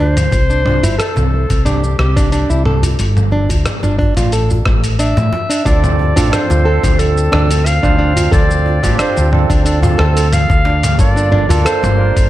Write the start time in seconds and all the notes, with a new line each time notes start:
Already playing: D2
0.00 D4 C5
0.17 mid tom, open hi-hat, shaker
0.32 C2, kick, open hi-hat, djembe tone, shaker
0.50 D4, shaker
0.65 D4, mid tom, djembe tone
0.83 G1 E4, open hi-hat, djembe bass, shaker
0.98 A4, cross-stick, open hi-hat, shaker
1.16 C2, mid tom, djembe slap, djembe tone, shaker
1.50 C2, kick, open hi-hat, djembe slap, shaker
1.65 D4 G4, mid tom, open hi-hat, shaker
1.84 shaker
1.98 C2 G4, cross-stick, djembe slap
2.17 D4, kick, mid tom, open hi-hat, shaker
2.32 D4, open hi-hat, shaker
2.50 C2 E4, shaker
2.65 A4, mid tom
2.83 open hi-hat, djembe bass, shaker
2.99 G1, open hi-hat, djembe tone, shaker
3.17 mid tom, shaker
3.31 D4, djembe tone
3.49 D2, kick, open hi-hat, djembe bass, shaker
3.66 cross-stick, mid tom, open hi-hat, shaker
3.83 G1 D4, djembe slap, djembe tone, shaker
3.99 D4, kick, djembe bass
4.17 A1 F4, mid tom, open hi-hat, djembe slap, shaker
4.32 A4, open hi-hat, shaker
4.50 djembe bass, shaker
4.65 A1, kick, cross-stick, mid tom, djembe slap
4.84 open hi-hat, shaker
4.99 D4 E5, open hi-hat, shaker
5.17 A2, mid tom, djembe slap, shaker
5.33 djembe slap, djembe tone
5.50 D4, open hi-hat, shaker
5.65 D2 C4 D4 F4 A4 D5, kick, open hi-hat, djembe tone, shaker
5.84 mid tom, shaker
5.99 djembe tone
6.16 A1 C4 D4 F4 A4, open hi-hat, djembe bass, shaker
6.32 D4 C5, cross-stick, mid tom, open hi-hat, shaker
6.50 D2 F4, djembe slap, djembe tone, shaker
6.64 C4 D4 F4 A4
6.83 D2, kick, mid tom, open hi-hat, djembe slap, shaker
6.99 A4, open hi-hat, shaker
7.17 shaker
7.32 D2 D4, cross-stick, mid tom, djembe slap
7.51 open hi-hat, shaker
7.66 F5, open hi-hat, djembe slap, shaker
7.83 D2 C4 D4 F4 C5, kick, mid tom, shaker
7.99 D4
8.16 F4, open hi-hat, djembe bass, shaker
8.31 D2 C4 D4 F4 A4 C5 D5, kick, mid tom, open hi-hat, djembe tone, shaker
8.51 shaker
8.66 djembe tone
8.82 A1 C4 D4 F4 G4, kick, mid tom, open hi-hat, djembe bass, shaker
8.99 D4 C5, cross-stick, open hi-hat, shaker
9.17 D2, djembe slap, djembe tone, shaker
9.32 C4 D4 F4 A4, mid tom
9.50 D2 D4, kick, open hi-hat, djembe slap, shaker
9.65 D4 A4, open hi-hat, shaker
9.82 F4, mid tom, djembe bass, shaker
9.98 D2 C4 D4 F4 A4, cross-stick, djembe slap
10.17 open hi-hat, shaker
10.33 F5, mid tom, open hi-hat, shaker
10.50 D2, kick, djembe slap, shaker
10.65 D4, djembe slap, djembe tone
10.83 mid tom, open hi-hat, shaker
10.98 G1 A#3 D4 F4 A4 D5, kick, open hi-hat, djembe tone, shaker
11.16 D4, shaker
11.32 D4, mid tom, djembe tone
11.49 D2 A#3 D4 F4 A4, open hi-hat, djembe bass, shaker
11.65 A4 C5, cross-stick, open hi-hat, shaker
11.83 G1, mid tom, djembe slap, djembe tone, shaker
11.97 A#3 D4 F4 A#4
12.17 G1, kick, open hi-hat, djembe slap, shaker